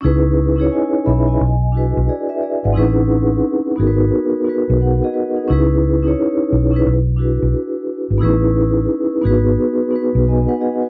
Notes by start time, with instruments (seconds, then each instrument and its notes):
0.01 fingered electric bass C#2, vibraphone C#4 D#4 E4 G#4
0.05 vibraphone B4
0.56 vibraphone C#4 D#4 E4 G#4
0.61 vibraphone C#5
0.72 vibraphone D#5 G#5
1.06 fingered electric bass B1, vibraphone E5 B5
1.28 vibraphone D#5 G#5
1.41 fingered electric bass B1
1.72 vibraphone D4 E4 F#4 G#4
1.77 vibraphone B4
1.97 fingered electric bass B1
2.09 vibraphone G#4 D5
2.29 vibraphone B4 E5
2.42 vibraphone G#4 D5
2.64 fingered electric bass G#1, vibraphone B4 F#5
2.73 vibraphone C4 D#4 E4 G#4
2.77 fingered electric bass A1, vibraphone C#4 B4
3.76 fingered electric bass G#1, vibraphone B3 D#4 F#4 G#4
3.81 vibraphone A#4
3.87 vibraphone B4
4.44 vibraphone B3 D#4 F#4 G#4
4.49 vibraphone B4
4.70 fingered electric bass B1
4.81 vibraphone B4 F#5
5.04 vibraphone G#4 D#5
5.14 vibraphone F#4 B4
5.36 vibraphone D#4 G#4
5.48 fingered electric bass C#2, vibraphone C#4 D#4 E4 G#4
5.52 vibraphone B4
6.03 vibraphone C#4 D#4 E4 G#4
6.08 vibraphone C#5
6.52 fingered electric bass B1
6.71 vibraphone C#4 D#4 E4 G#4
6.76 vibraphone B4
6.86 fingered electric bass B1
7.17 vibraphone D4 E4 F#4 G#4
7.22 vibraphone B4
7.43 fingered electric bass B1
8.11 fingered electric bass G#1
8.18 vibraphone B3 D#4 E4 G#4
8.23 fingered electric bass A1, vibraphone C#4 B4
9.22 fingered electric bass G#1, vibraphone B3 D#4 F#4 G#4
9.27 vibraphone B4
9.90 vibraphone B3 D#4 F#4 G#4
9.95 vibraphone B4
10.15 fingered electric bass B1
10.28 vibraphone D#5 G#5
10.48 vibraphone B4 F#5
10.61 vibraphone G#4 D#5
10.82 vibraphone F#4 B4